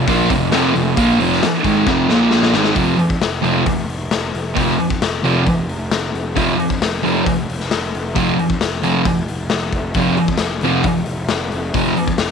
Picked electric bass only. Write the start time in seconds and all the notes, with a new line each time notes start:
0.08 A#1
0.30 F1
0.53 F1
0.76 F1
0.98 A#1
1.20 F1
1.64 G#1
1.87 F1
2.09 A#1
2.53 G#1
2.76 F1
2.97 F2
3.21 F1
3.43 F1
3.66 F1
3.88 F1
4.11 F1
4.34 F1
4.57 F1
4.78 F2
5.01 F1
5.24 F1
5.47 F1
5.69 F1
5.91 F1
6.13 F1
6.37 F1
6.59 F2
6.81 F1
7.05 F1
7.26 F1
7.50 F1
7.72 F1
7.95 F1
8.16 F1
8.40 F2
8.62 F1
8.84 F1
9.06 F1
9.30 F1
9.52 F1
9.72 F1
9.95 F1
10.17 F2
10.41 F1
10.63 F1
10.84 F1
11.08 F1
11.30 F1
11.53 F1
11.74 F1
11.96 F2
12.19 F1